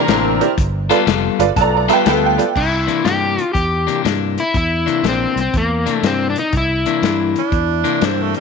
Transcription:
Already playing: A#4
0.07 A1 C3 E3 A#3 C4 D4 E4 C5, snare, closed hi-hat
0.41 E4 G4 A#4 D5, closed hi-hat
0.58 G1, kick, closed hi-hat
0.90 G3 B3 F4 A4 B4 D5, closed hi-hat
1.06 F1 G3 B3 F4 A4, snare, closed hi-hat
1.39 G1 F4 A4 B4 D5, closed hi-hat
1.56 B1 A3 B3 F4 A4 A5, kick, closed hi-hat
1.61 D5 A#5
1.77 D5 A#5
1.88 G3 B3 F4 A4 B4 E5, closed hi-hat
1.92 B4 G5
2.05 D2 G3 A3 B3 F4 A4, snare, closed hi-hat
2.09 B4 G5
2.26 G5
2.38 F4 A4 B4 D5, closed hi-hat
2.56 C2 E4, kick, crash
2.87 C3 E3 A#3 D4, closed hi-hat
3.04 G2 C3 E3 A#3 D4 G4, snare, closed hi-hat
3.38 closed hi-hat
3.53 E2 G4, kick, closed hi-hat
3.87 C3 E3 A#3 D4, closed hi-hat
4.03 G2 C3 E3 A#3 D4, snare, closed hi-hat
4.38 E4, closed hi-hat
4.54 E2 E4, kick, closed hi-hat
4.86 C3 E3 A#3 D4, closed hi-hat
5.03 A#1 C3 E3 A#3 D4, snare, closed hi-hat
5.08 C4
5.36 C2, closed hi-hat
5.41 C4
5.54 E2 A#3, kick, closed hi-hat
5.86 C3 E3 A#3 D4, closed hi-hat
5.94 A3
6.03 G2 C3 E3 A#3 C4 D4, snare, closed hi-hat
6.30 D4
6.36 D#4, closed hi-hat
6.53 C2, kick, closed hi-hat
6.57 E4
6.86 C3 E3 A#3 D4, closed hi-hat
7.02 G2 C3 E3 A#3 D4, snare, closed hi-hat
7.36 D4, closed hi-hat
7.52 E2, kick, closed hi-hat
7.84 C3 E3 A#3 D4, closed hi-hat
8.01 G2 C3 E3 A#3 C4 D4, snare, closed hi-hat
8.22 A3
8.34 G3, closed hi-hat

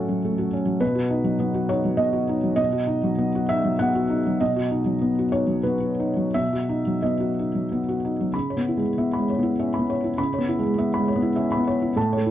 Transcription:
Already playing: A2 F#3 A3 C#4 F#4 A4 C#5
0.09 F#3
0.25 A3
0.38 F#4
0.53 C#4
0.66 F#3
0.80 B2 B4
0.95 F#4
1.10 D#4
1.24 F#3
1.40 B3
1.55 F#4
1.69 D#4 C#5
1.85 F#3
1.97 B3 D#5
2.13 F#4
2.29 D#4
2.44 F#3
2.56 B2 D#5
2.72 F#4
2.87 D#4
3.03 F#3
3.18 B3
3.35 F#4
3.49 D#4 E5
3.64 F#3
3.79 B3 F#5
3.95 F#4
4.10 D#4
4.27 F#3
4.41 B2 D#5
4.56 F#4
4.71 D#4
4.86 F#3
5.01 B3
5.19 F#4
5.32 D#4 C#5
5.47 F#3
5.63 B3 B4
5.80 F#4
6.00 D#4
6.17 F#3
6.34 B2 E5
6.53 F#4
6.69 D#4
6.87 F#3
7.02 B3 D#5
7.20 F#4
7.39 D#4
7.55 F#3
7.72 B3
7.89 F#4
8.05 D#4
8.21 F#3
8.34 C#3 B5
8.50 C#5
8.57 B3
8.68 E4
8.77 G#3
8.82 G#3
8.98 B3 E5
9.13 B5
9.19 G#3
9.30 C#5
9.39 B3
9.43 E4
9.59 C#4 E5
9.74 B5
9.79 B3
9.90 C#5
10.04 E4
10.18 C#3 B5
10.34 C#5
10.38 B3
10.49 E4
10.59 G#3
10.63 G#3
10.78 B3 E5
10.94 B5
10.99 G#3
11.08 C#5
11.16 B3
11.22 E4
11.36 C#4 E5
11.52 B5
11.57 B3
11.67 C#5
11.82 E4
11.96 A2 A5
12.13 C#5
12.17 A3
12.26 E4

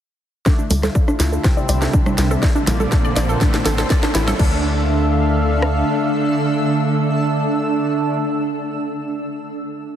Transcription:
0.46 D3 A3 D4 E4 F4, kick, cross-stick, snare, riser, shaker
0.59 D4, shaker
0.70 D2 A4, open hi-hat, low conga, shaker
0.83 A4, cross-stick, snare, low conga, shaker
0.95 D5, kick, shaker
1.08 D4, cross-stick, shaker
1.20 D2 E4, snare, open hi-hat, shaker
1.32 A4, shaker
1.44 C3 G3 C4 D4 E4, kick, cross-stick, snare, shaker
1.57 D5, shaker
1.69 C2 D5, cross-stick, open hi-hat, shaker
1.82 A4, snare, shaker
1.93 D4, kick, shaker
2.06 D4, cross-stick, low conga, shaker
2.18 C2 A#4, snare, open hi-hat, shaker
2.31 A4, cross-stick, shaker
2.43 A#3 F4 C5 D5, kick, snare, shaker
2.55 D4, shaker
2.67 A#1 A#2 F3 A#3 E4, snare, open hi-hat, low conga, shaker
2.80 A4, low conga, shaker
2.92 D4, kick, snare, shaker
3.05 D5, shaker
3.16 A#1 D5, snare, open hi-hat, shaker
3.29 A4, shaker
3.41 A2 E3 A3 D4 E4 A4, kick, snare, shaker
3.54 D4, snare, shaker
3.66 A1 A4, snare, open hi-hat, shaker
3.78 A4, snare, shaker
3.90 D5, kick, snare, open hi-hat, shaker
4.03 D4, snare, shaker
4.15 A1 E4, snare, open hi-hat, shaker
4.27 A4, snare, low conga, shaker
4.39 D2 D3 A3 D4 A4 E5 F5, kick, crash
4.47 A4
4.55 E6
5.62 cross-stick

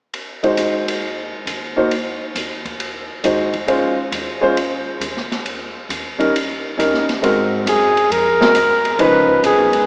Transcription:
0.14 ride
0.43 G#3 D#4 F#4 C5, ride
0.57 D#2, hi-hat pedal, ride
0.88 ride
1.46 D#2, hi-hat pedal, ride
1.76 A#3 D#4 F#4 C5
1.91 ride
2.35 D#2, hi-hat pedal, ride
2.65 kick, ride
2.80 ride
3.24 D#2 G#3 D#4 F#4 C5, hi-hat pedal, ride
3.53 kick, ride
3.67 G#3 C#4 F4 C5, ride
4.11 D#2, hi-hat pedal, ride
4.41 G#3 C#4 F4 C5
4.57 ride
5.00 D#2, hi-hat pedal, ride
5.17 snare
5.32 snare, ride
5.46 ride
5.89 D#2, hi-hat pedal, ride
6.18 G3 C#4 D#4 A#4, ride
6.36 ride
6.77 D#2 G3 C#4 D#4 A#4, hi-hat pedal, ride
6.94 snare
7.09 snare, ride
7.22 G#2 G#3 C4 F#4 A#4, ride
7.66 F#2 G#4, hi-hat pedal, ride
7.96 muted upright bass stroke, ride
8.10 F2 A#4, ride
8.40 G#3 C4 F#4 A#4, snare
8.55 D#2, hi-hat pedal, ride
8.85 ride
8.99 C#2 F3 C#4 D#4 B4, ride
9.29 kick
9.43 C2 G#4, hi-hat pedal, ride
9.58 B1
9.72 G#1, ride

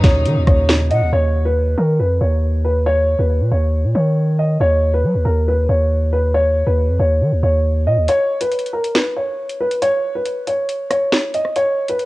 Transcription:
Already playing: A#2 C#3 F#3 D#4
0.04 D#2 C#5, kick, snare, closed hi-hat
0.25 D#3, closed hi-hat
0.36 D#2
0.47 D#2 C#5, kick, cross-stick, closed hi-hat
0.69 snare
0.91 A#2 D#5 F#5, closed hi-hat
1.02 D#2
1.12 D#2 C#5
1.45 B4
1.78 D#3 A#4
1.99 F2 B4
2.21 D#2 C#5
2.65 B4
2.86 C#5
3.19 D#2 B4
3.41 A#2
3.52 D#2 C#5
3.84 A#2
3.95 D#3 C#5
4.39 D#5
4.60 D#2 C#5
4.94 B4
5.04 F#3
5.15 D#2
5.25 D#2 A#4
5.48 B4
5.69 D#2 C#5
6.13 B4
6.34 C#5
6.66 D#2 B4
6.89 F2
6.99 D#2 C#5
7.21 D#3
7.32 D#2
7.43 D#2 C#5
7.86 A#2 D#5
7.97 D#2
8.08 C#5, closed hi-hat
8.41 B4, closed hi-hat
8.52 closed hi-hat
8.59 closed hi-hat
8.66 closed hi-hat
8.73 A#4
8.84 closed hi-hat
8.95 B4, snare, closed hi-hat
9.17 C#5
9.49 closed hi-hat
9.60 B4
9.71 closed hi-hat
9.82 C#5, closed hi-hat
10.15 B4
10.25 closed hi-hat
10.47 C#5, closed hi-hat
10.69 closed hi-hat
10.91 C#5, cross-stick, closed hi-hat
11.12 snare
11.34 D#5, closed hi-hat
11.45 cross-stick
11.56 C#5, closed hi-hat
11.89 B4, closed hi-hat
11.99 closed hi-hat

